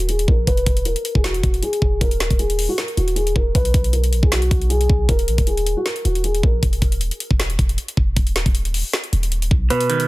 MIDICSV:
0, 0, Header, 1, 5, 480
1, 0, Start_track
1, 0, Tempo, 384615
1, 590, Time_signature, 4, 2, 24, 8
1, 12575, End_track
2, 0, Start_track
2, 0, Title_t, "Felt piano"
2, 0, Program_c, 0, 0
2, 112, Note_on_c, 0, 68, 77
2, 306, Note_off_c, 0, 68, 0
2, 355, Note_on_c, 0, 70, 80
2, 548, Note_off_c, 0, 70, 0
2, 590, Note_on_c, 0, 71, 110
2, 1041, Note_off_c, 0, 71, 0
2, 1068, Note_on_c, 0, 70, 76
2, 1414, Note_off_c, 0, 70, 0
2, 1433, Note_on_c, 0, 68, 74
2, 1527, Note_off_c, 0, 68, 0
2, 1551, Note_on_c, 0, 66, 81
2, 2002, Note_off_c, 0, 66, 0
2, 2032, Note_on_c, 0, 68, 84
2, 2482, Note_off_c, 0, 68, 0
2, 2510, Note_on_c, 0, 70, 92
2, 2962, Note_off_c, 0, 70, 0
2, 2984, Note_on_c, 0, 68, 85
2, 3332, Note_off_c, 0, 68, 0
2, 3354, Note_on_c, 0, 66, 82
2, 3447, Note_off_c, 0, 66, 0
2, 3477, Note_on_c, 0, 70, 81
2, 3669, Note_off_c, 0, 70, 0
2, 3707, Note_on_c, 0, 66, 79
2, 3903, Note_off_c, 0, 66, 0
2, 3940, Note_on_c, 0, 68, 82
2, 4139, Note_off_c, 0, 68, 0
2, 4194, Note_on_c, 0, 70, 79
2, 4387, Note_off_c, 0, 70, 0
2, 4430, Note_on_c, 0, 71, 107
2, 4881, Note_off_c, 0, 71, 0
2, 4904, Note_on_c, 0, 70, 72
2, 5252, Note_off_c, 0, 70, 0
2, 5279, Note_on_c, 0, 68, 79
2, 5370, Note_off_c, 0, 68, 0
2, 5390, Note_on_c, 0, 66, 86
2, 5841, Note_off_c, 0, 66, 0
2, 5862, Note_on_c, 0, 68, 91
2, 6317, Note_off_c, 0, 68, 0
2, 6347, Note_on_c, 0, 70, 95
2, 6800, Note_off_c, 0, 70, 0
2, 6828, Note_on_c, 0, 68, 83
2, 7174, Note_off_c, 0, 68, 0
2, 7199, Note_on_c, 0, 66, 79
2, 7290, Note_off_c, 0, 66, 0
2, 7305, Note_on_c, 0, 70, 84
2, 7502, Note_off_c, 0, 70, 0
2, 7545, Note_on_c, 0, 66, 71
2, 7742, Note_off_c, 0, 66, 0
2, 7791, Note_on_c, 0, 68, 79
2, 7985, Note_off_c, 0, 68, 0
2, 8034, Note_on_c, 0, 70, 76
2, 8227, Note_off_c, 0, 70, 0
2, 12109, Note_on_c, 0, 71, 104
2, 12561, Note_off_c, 0, 71, 0
2, 12575, End_track
3, 0, Start_track
3, 0, Title_t, "Clean electric guitar"
3, 0, Program_c, 1, 27
3, 12110, Note_on_c, 1, 47, 97
3, 12350, Note_on_c, 1, 51, 76
3, 12575, Note_off_c, 1, 47, 0
3, 12575, Note_off_c, 1, 51, 0
3, 12575, End_track
4, 0, Start_track
4, 0, Title_t, "808-style bass"
4, 0, Program_c, 2, 38
4, 0, Note_on_c, 2, 27, 105
4, 332, Note_off_c, 2, 27, 0
4, 350, Note_on_c, 2, 34, 102
4, 580, Note_off_c, 2, 34, 0
4, 591, Note_on_c, 2, 28, 107
4, 821, Note_off_c, 2, 28, 0
4, 830, Note_on_c, 2, 28, 110
4, 1071, Note_on_c, 2, 27, 97
4, 1089, Note_off_c, 2, 28, 0
4, 1191, Note_off_c, 2, 27, 0
4, 1438, Note_on_c, 2, 28, 101
4, 1776, Note_off_c, 2, 28, 0
4, 1791, Note_on_c, 2, 28, 100
4, 2021, Note_off_c, 2, 28, 0
4, 2270, Note_on_c, 2, 28, 100
4, 2500, Note_off_c, 2, 28, 0
4, 2511, Note_on_c, 2, 27, 111
4, 2863, Note_off_c, 2, 27, 0
4, 2877, Note_on_c, 2, 27, 102
4, 3338, Note_off_c, 2, 27, 0
4, 3710, Note_on_c, 2, 27, 103
4, 4171, Note_off_c, 2, 27, 0
4, 4190, Note_on_c, 2, 27, 101
4, 4420, Note_off_c, 2, 27, 0
4, 4430, Note_on_c, 2, 35, 105
4, 4661, Note_off_c, 2, 35, 0
4, 4670, Note_on_c, 2, 35, 110
4, 5151, Note_on_c, 2, 34, 97
4, 5169, Note_off_c, 2, 35, 0
4, 5271, Note_off_c, 2, 34, 0
4, 5278, Note_on_c, 2, 35, 102
4, 5616, Note_off_c, 2, 35, 0
4, 5630, Note_on_c, 2, 35, 104
4, 6091, Note_off_c, 2, 35, 0
4, 6110, Note_on_c, 2, 35, 100
4, 6340, Note_off_c, 2, 35, 0
4, 6350, Note_on_c, 2, 27, 102
4, 6590, Note_on_c, 2, 34, 97
4, 6609, Note_off_c, 2, 27, 0
4, 6711, Note_off_c, 2, 34, 0
4, 6717, Note_on_c, 2, 27, 99
4, 7178, Note_off_c, 2, 27, 0
4, 7551, Note_on_c, 2, 27, 105
4, 8011, Note_off_c, 2, 27, 0
4, 8030, Note_on_c, 2, 34, 101
4, 8261, Note_off_c, 2, 34, 0
4, 8271, Note_on_c, 2, 28, 107
4, 8501, Note_off_c, 2, 28, 0
4, 8510, Note_on_c, 2, 28, 109
4, 8751, Note_on_c, 2, 27, 99
4, 8769, Note_off_c, 2, 28, 0
4, 8871, Note_off_c, 2, 27, 0
4, 9118, Note_on_c, 2, 28, 97
4, 9456, Note_off_c, 2, 28, 0
4, 9471, Note_on_c, 2, 28, 107
4, 9701, Note_off_c, 2, 28, 0
4, 9950, Note_on_c, 2, 28, 98
4, 10180, Note_off_c, 2, 28, 0
4, 10190, Note_on_c, 2, 27, 108
4, 10543, Note_off_c, 2, 27, 0
4, 10557, Note_on_c, 2, 27, 99
4, 11018, Note_off_c, 2, 27, 0
4, 11391, Note_on_c, 2, 27, 103
4, 11851, Note_off_c, 2, 27, 0
4, 11870, Note_on_c, 2, 35, 103
4, 12110, Note_off_c, 2, 35, 0
4, 12575, End_track
5, 0, Start_track
5, 0, Title_t, "Drums"
5, 1, Note_on_c, 9, 42, 55
5, 109, Note_off_c, 9, 42, 0
5, 109, Note_on_c, 9, 42, 80
5, 234, Note_off_c, 9, 42, 0
5, 239, Note_on_c, 9, 42, 61
5, 350, Note_on_c, 9, 36, 99
5, 364, Note_off_c, 9, 42, 0
5, 475, Note_off_c, 9, 36, 0
5, 590, Note_on_c, 9, 36, 118
5, 590, Note_on_c, 9, 42, 86
5, 715, Note_off_c, 9, 36, 0
5, 715, Note_off_c, 9, 42, 0
5, 716, Note_on_c, 9, 42, 65
5, 829, Note_off_c, 9, 42, 0
5, 829, Note_on_c, 9, 42, 85
5, 830, Note_on_c, 9, 36, 105
5, 954, Note_off_c, 9, 42, 0
5, 955, Note_off_c, 9, 36, 0
5, 956, Note_on_c, 9, 42, 65
5, 1065, Note_off_c, 9, 42, 0
5, 1065, Note_on_c, 9, 42, 85
5, 1190, Note_off_c, 9, 42, 0
5, 1197, Note_on_c, 9, 42, 61
5, 1309, Note_off_c, 9, 42, 0
5, 1309, Note_on_c, 9, 42, 81
5, 1434, Note_off_c, 9, 42, 0
5, 1438, Note_on_c, 9, 36, 94
5, 1550, Note_on_c, 9, 38, 121
5, 1551, Note_on_c, 9, 42, 81
5, 1562, Note_off_c, 9, 36, 0
5, 1675, Note_off_c, 9, 38, 0
5, 1676, Note_off_c, 9, 42, 0
5, 1677, Note_on_c, 9, 42, 60
5, 1791, Note_on_c, 9, 36, 101
5, 1792, Note_off_c, 9, 42, 0
5, 1792, Note_on_c, 9, 42, 71
5, 1915, Note_off_c, 9, 36, 0
5, 1917, Note_off_c, 9, 42, 0
5, 1920, Note_on_c, 9, 42, 54
5, 2028, Note_off_c, 9, 42, 0
5, 2028, Note_on_c, 9, 42, 79
5, 2153, Note_off_c, 9, 42, 0
5, 2159, Note_on_c, 9, 42, 61
5, 2270, Note_on_c, 9, 36, 95
5, 2284, Note_off_c, 9, 42, 0
5, 2395, Note_off_c, 9, 36, 0
5, 2510, Note_on_c, 9, 36, 118
5, 2510, Note_on_c, 9, 42, 88
5, 2635, Note_off_c, 9, 36, 0
5, 2635, Note_off_c, 9, 42, 0
5, 2637, Note_on_c, 9, 42, 63
5, 2750, Note_off_c, 9, 42, 0
5, 2750, Note_on_c, 9, 42, 85
5, 2751, Note_on_c, 9, 38, 96
5, 2875, Note_off_c, 9, 42, 0
5, 2876, Note_off_c, 9, 38, 0
5, 2877, Note_on_c, 9, 36, 94
5, 2877, Note_on_c, 9, 42, 63
5, 2986, Note_off_c, 9, 42, 0
5, 2986, Note_on_c, 9, 42, 83
5, 3002, Note_off_c, 9, 36, 0
5, 3111, Note_off_c, 9, 42, 0
5, 3118, Note_on_c, 9, 42, 64
5, 3229, Note_on_c, 9, 46, 88
5, 3242, Note_off_c, 9, 42, 0
5, 3354, Note_off_c, 9, 46, 0
5, 3470, Note_on_c, 9, 38, 121
5, 3471, Note_on_c, 9, 42, 83
5, 3594, Note_off_c, 9, 38, 0
5, 3596, Note_off_c, 9, 42, 0
5, 3596, Note_on_c, 9, 42, 60
5, 3711, Note_off_c, 9, 42, 0
5, 3711, Note_on_c, 9, 42, 73
5, 3836, Note_off_c, 9, 42, 0
5, 3840, Note_on_c, 9, 42, 56
5, 3948, Note_off_c, 9, 42, 0
5, 3948, Note_on_c, 9, 42, 80
5, 4073, Note_off_c, 9, 42, 0
5, 4079, Note_on_c, 9, 42, 62
5, 4190, Note_on_c, 9, 36, 101
5, 4203, Note_off_c, 9, 42, 0
5, 4314, Note_off_c, 9, 36, 0
5, 4430, Note_on_c, 9, 36, 115
5, 4430, Note_on_c, 9, 42, 86
5, 4555, Note_off_c, 9, 36, 0
5, 4555, Note_off_c, 9, 42, 0
5, 4556, Note_on_c, 9, 42, 65
5, 4669, Note_off_c, 9, 42, 0
5, 4669, Note_on_c, 9, 42, 86
5, 4670, Note_on_c, 9, 36, 103
5, 4794, Note_off_c, 9, 42, 0
5, 4795, Note_off_c, 9, 36, 0
5, 4796, Note_on_c, 9, 42, 64
5, 4906, Note_off_c, 9, 42, 0
5, 4906, Note_on_c, 9, 42, 83
5, 5030, Note_off_c, 9, 42, 0
5, 5037, Note_on_c, 9, 42, 64
5, 5149, Note_off_c, 9, 42, 0
5, 5149, Note_on_c, 9, 42, 81
5, 5274, Note_off_c, 9, 42, 0
5, 5278, Note_on_c, 9, 36, 94
5, 5389, Note_on_c, 9, 38, 125
5, 5391, Note_on_c, 9, 42, 83
5, 5402, Note_off_c, 9, 36, 0
5, 5514, Note_off_c, 9, 38, 0
5, 5516, Note_off_c, 9, 42, 0
5, 5516, Note_on_c, 9, 42, 60
5, 5630, Note_on_c, 9, 36, 102
5, 5631, Note_off_c, 9, 42, 0
5, 5631, Note_on_c, 9, 42, 74
5, 5755, Note_off_c, 9, 36, 0
5, 5756, Note_off_c, 9, 42, 0
5, 5760, Note_on_c, 9, 42, 55
5, 5868, Note_off_c, 9, 42, 0
5, 5868, Note_on_c, 9, 42, 79
5, 5993, Note_off_c, 9, 42, 0
5, 5999, Note_on_c, 9, 42, 62
5, 6110, Note_on_c, 9, 36, 96
5, 6124, Note_off_c, 9, 42, 0
5, 6234, Note_off_c, 9, 36, 0
5, 6350, Note_on_c, 9, 36, 118
5, 6350, Note_on_c, 9, 42, 88
5, 6475, Note_off_c, 9, 36, 0
5, 6475, Note_off_c, 9, 42, 0
5, 6476, Note_on_c, 9, 42, 65
5, 6589, Note_off_c, 9, 42, 0
5, 6589, Note_on_c, 9, 42, 83
5, 6714, Note_off_c, 9, 42, 0
5, 6716, Note_on_c, 9, 42, 62
5, 6717, Note_on_c, 9, 36, 96
5, 6825, Note_off_c, 9, 42, 0
5, 6825, Note_on_c, 9, 42, 81
5, 6842, Note_off_c, 9, 36, 0
5, 6950, Note_off_c, 9, 42, 0
5, 6957, Note_on_c, 9, 42, 61
5, 7070, Note_off_c, 9, 42, 0
5, 7070, Note_on_c, 9, 42, 81
5, 7194, Note_off_c, 9, 42, 0
5, 7310, Note_on_c, 9, 38, 121
5, 7311, Note_on_c, 9, 42, 81
5, 7434, Note_off_c, 9, 38, 0
5, 7436, Note_off_c, 9, 42, 0
5, 7436, Note_on_c, 9, 42, 59
5, 7551, Note_off_c, 9, 42, 0
5, 7551, Note_on_c, 9, 42, 74
5, 7676, Note_off_c, 9, 42, 0
5, 7680, Note_on_c, 9, 42, 58
5, 7788, Note_off_c, 9, 42, 0
5, 7788, Note_on_c, 9, 42, 76
5, 7913, Note_off_c, 9, 42, 0
5, 7919, Note_on_c, 9, 42, 60
5, 8030, Note_on_c, 9, 36, 100
5, 8044, Note_off_c, 9, 42, 0
5, 8155, Note_off_c, 9, 36, 0
5, 8271, Note_on_c, 9, 36, 116
5, 8271, Note_on_c, 9, 42, 89
5, 8395, Note_off_c, 9, 36, 0
5, 8396, Note_off_c, 9, 42, 0
5, 8397, Note_on_c, 9, 42, 64
5, 8509, Note_off_c, 9, 42, 0
5, 8509, Note_on_c, 9, 42, 84
5, 8510, Note_on_c, 9, 36, 103
5, 8634, Note_off_c, 9, 42, 0
5, 8635, Note_off_c, 9, 36, 0
5, 8637, Note_on_c, 9, 42, 63
5, 8746, Note_off_c, 9, 42, 0
5, 8746, Note_on_c, 9, 42, 84
5, 8871, Note_off_c, 9, 42, 0
5, 8878, Note_on_c, 9, 42, 64
5, 8990, Note_off_c, 9, 42, 0
5, 8990, Note_on_c, 9, 42, 82
5, 9115, Note_off_c, 9, 42, 0
5, 9118, Note_on_c, 9, 36, 93
5, 9230, Note_on_c, 9, 38, 123
5, 9232, Note_on_c, 9, 42, 83
5, 9243, Note_off_c, 9, 36, 0
5, 9355, Note_off_c, 9, 38, 0
5, 9357, Note_off_c, 9, 42, 0
5, 9357, Note_on_c, 9, 42, 60
5, 9471, Note_on_c, 9, 36, 98
5, 9472, Note_off_c, 9, 42, 0
5, 9472, Note_on_c, 9, 42, 73
5, 9596, Note_off_c, 9, 36, 0
5, 9597, Note_off_c, 9, 42, 0
5, 9601, Note_on_c, 9, 42, 55
5, 9709, Note_off_c, 9, 42, 0
5, 9709, Note_on_c, 9, 42, 81
5, 9834, Note_off_c, 9, 42, 0
5, 9839, Note_on_c, 9, 42, 63
5, 9950, Note_on_c, 9, 36, 98
5, 9964, Note_off_c, 9, 42, 0
5, 10075, Note_off_c, 9, 36, 0
5, 10190, Note_on_c, 9, 36, 117
5, 10190, Note_on_c, 9, 42, 86
5, 10315, Note_off_c, 9, 36, 0
5, 10315, Note_off_c, 9, 42, 0
5, 10317, Note_on_c, 9, 42, 64
5, 10429, Note_off_c, 9, 42, 0
5, 10429, Note_on_c, 9, 42, 84
5, 10430, Note_on_c, 9, 38, 92
5, 10554, Note_off_c, 9, 42, 0
5, 10555, Note_off_c, 9, 38, 0
5, 10557, Note_on_c, 9, 36, 99
5, 10557, Note_on_c, 9, 42, 62
5, 10666, Note_off_c, 9, 42, 0
5, 10666, Note_on_c, 9, 42, 83
5, 10682, Note_off_c, 9, 36, 0
5, 10791, Note_off_c, 9, 42, 0
5, 10797, Note_on_c, 9, 42, 62
5, 10910, Note_on_c, 9, 46, 88
5, 10922, Note_off_c, 9, 42, 0
5, 11035, Note_off_c, 9, 46, 0
5, 11150, Note_on_c, 9, 38, 121
5, 11152, Note_on_c, 9, 42, 83
5, 11275, Note_off_c, 9, 38, 0
5, 11277, Note_off_c, 9, 42, 0
5, 11277, Note_on_c, 9, 42, 62
5, 11392, Note_off_c, 9, 42, 0
5, 11392, Note_on_c, 9, 42, 75
5, 11517, Note_off_c, 9, 42, 0
5, 11520, Note_on_c, 9, 42, 54
5, 11629, Note_off_c, 9, 42, 0
5, 11629, Note_on_c, 9, 42, 77
5, 11753, Note_off_c, 9, 42, 0
5, 11759, Note_on_c, 9, 42, 62
5, 11870, Note_on_c, 9, 36, 100
5, 11884, Note_off_c, 9, 42, 0
5, 11995, Note_off_c, 9, 36, 0
5, 12111, Note_on_c, 9, 42, 89
5, 12235, Note_off_c, 9, 42, 0
5, 12237, Note_on_c, 9, 42, 66
5, 12350, Note_off_c, 9, 42, 0
5, 12350, Note_on_c, 9, 42, 82
5, 12475, Note_off_c, 9, 42, 0
5, 12477, Note_on_c, 9, 42, 64
5, 12575, Note_off_c, 9, 42, 0
5, 12575, End_track
0, 0, End_of_file